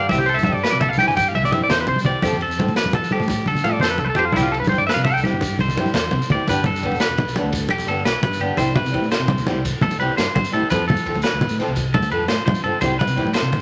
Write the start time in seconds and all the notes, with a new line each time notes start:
Already playing: D5
0.09 C2 C4 E4 G4 E5, muted nylon-string guitar stroke, kick, ride, muted conga, high conga, maracas
0.13 G4
0.18 G4, low conga, maracas
0.26 A4 C5, ride
0.34 G2 E5
0.38 maracas
0.43 G3 C4 E4 E5, kick, ride, muted conga, high conga
0.48 G4
0.53 G2 D5, low conga
0.57 maracas
0.63 B4, snare, ride, maracas
0.70 C3 D5, high conga, low conga
0.80 A4 E5, ride, muted conga, low conga
0.89 C2 F5
0.93 maracas
0.98 G3 C4 E4 G4 G5, snare, ride, high conga
1.03 G4
1.07 G2 G#5, low conga, maracas
1.16 G5, kick, ride, muted conga, maracas
1.28 F5
1.33 C2 E5, ride, high conga, low conga
1.44 D5, low conga, maracas
1.50 G2 G3 C4 E4, ride, muted conga, low conga
1.54 G4 E5, maracas
1.61 D5, high conga
1.69 E2 C5, snare, ride, low conga, maracas
1.79 B4, low conga
1.87 C3 C5, kick, ride, muted conga
1.96 high conga, maracas
2.04 C2 G3 C4 E4 D5, ride, low conga
2.08 G4
2.22 F2 F3 C4 F4 G4 A4, kick, ride, muted conga, high conga, maracas
2.33 low conga, maracas
2.41 A4, ride, low conga
2.48 F2, maracas
2.57 F3 C4 F4 A4, kick, ride, muted conga, high conga
2.66 A2, low conga, maracas
2.76 B4, snare, ride, maracas
2.83 F2, high conga, low conga
2.93 A4, ride, muted conga, low conga
3.02 F3, maracas
3.11 F3 C4 F4 G4 A4, ride, high conga
3.20 A2, low conga, maracas
3.28 kick, ride, muted conga, maracas
3.46 D3 A4, ride, high conga, low conga
3.55 low conga, maracas
3.63 A2 F3 C4 F4 A4 F5, ride, muted conga, low conga, maracas
3.71 D5, high conga
3.80 F2 C5, snare, ride, low conga
3.84 A4, maracas
3.88 B4, low conga
3.98 C2 A4, ride, muted conga
4.05 B4, high conga
4.10 A4
4.15 F2 F3 C4 F4 G4 C5, ride, low conga
4.19 A4
4.25 F4
4.32 C2 G3 C4 E4 G4, kick, ride, muted conga, high conga
4.37 G4, maracas
4.41 F4, low conga
4.49 A4, low conga
4.54 muted clean electric guitar stroke, ride
4.58 G2 B4, low conga
4.64 muted conga, high conga, maracas
4.69 G3 C4 E4 C5, kick, ride
4.74 G4, low conga, maracas
4.78 G2 D5
4.87 B4 E5, snare, ride
4.91 F5, maracas
4.96 C3, high conga
5.04 A4 E5, ride, muted conga, low conga
5.09 maracas
5.13 C2 G5, maracas
5.22 G3 C4 E4 G4, muted nylon-string guitar stroke, snare, ride, high conga
5.32 G2, low conga
5.41 kick, ride, muted conga, maracas
5.50 low conga, maracas
5.57 C2 C5, ride, high conga, low conga, maracas
5.68 low conga, maracas
5.76 G2 G3 C4 E4, ride, muted conga
5.80 G4
5.86 high conga, maracas
5.94 E2 C5, snare, ride, low conga, maracas
6.11 C3, kick, ride, muted conga
6.22 maracas
6.28 D2 G3 C4 D5, ride, low conga
6.33 E4 G4
6.40 low conga
6.47 G1 G3 B3 D4 G4 B4, kick, ride, muted conga, maracas
6.64 A4, ride, high conga, low conga
6.73 G2, low conga, maracas
6.82 G3 B3 D4 G4, kick, ride
6.90 E1, muted conga
6.95 maracas
7.00 B4, snare, ride, maracas
7.09 E1
7.17 ride, high conga, low conga
7.26 B1, low conga, maracas
7.35 G3 B3 D4, snare, ride, muted conga, low conga
7.43 D2, low conga
7.52 kick, ride, maracas
7.69 E1 G4, ride, high conga
7.78 muted conga, maracas
7.87 G1 G3 B3 D4 A4, ride
7.91 G4
7.96 low conga
8.05 B1 B4, snare, ride, maracas
8.22 G2 B4, ride, muted conga, low conga
8.33 maracas
8.40 G1 G3 B3 D4 G4, ride, low conga
8.50 low conga
8.57 C2 G3 C4 E4 G4 C5, kick, ride, muted conga, maracas
8.76 B4, ride, high conga, low conga
8.84 C3, low conga, maracas
8.91 G3 C4 E4 G4, kick, ride
9.01 A2, maracas
9.11 C5, snare, ride, maracas
9.19 C3
9.28 ride, high conga, low conga
9.37 E2, low conga, maracas
9.47 G3 C4 E4 G4, snare, ride, muted conga, low conga
9.55 C2, low conga
9.65 kick, ride, maracas
9.81 A1 A4, ride, high conga, low conga
9.91 muted conga, maracas
9.98 C2 G3 C4 E4 G4 B4, ride
10.09 low conga
10.17 G2 C5, snare, ride, maracas
10.35 G2 C5, kick, ride, muted conga, high conga, low conga
10.45 maracas
10.52 A2 G3 C4 E4 G4 A4, ride, low conga
10.63 low conga
10.70 F2 F3 C4 F4 A4 B4, kick, ride, muted conga, maracas
10.88 A4, ride, high conga, low conga
10.96 F3, low conga, maracas
11.05 F3 C4 A4, muted nylon-string guitar stroke, kick, ride
11.14 D2, muted conga, maracas
11.22 B4, snare, ride, maracas
11.33 D2
11.41 ride, high conga, low conga
11.49 A2, low conga, maracas
11.59 F3 C4 F4 A4, snare, ride, low conga
11.68 C2, low conga
11.76 kick, ride, maracas
11.94 D2 A4, ride, high conga, low conga
12.02 muted conga, maracas
12.10 F2 F3 C4 F4 A4 B4, ride
12.20 low conga
12.28 A2 C5, snare, ride, maracas
12.46 F3 C5, ride, muted conga, high conga, low conga
12.55 maracas
12.63 G2 F3 C4 F4 A4, ride, low conga
12.74 low conga
12.81 C2 G3 C4 E4 G4 C5, kick, ride, muted conga, maracas
12.99 B4, ride, high conga, low conga
13.07 C3, low conga, maracas
13.16 G3 C4 E4 G4, kick, ride, maracas
13.24 A2, muted conga
13.33 C5, snare, ride, maracas
13.42 C3, low conga
13.52 ride, high conga, low conga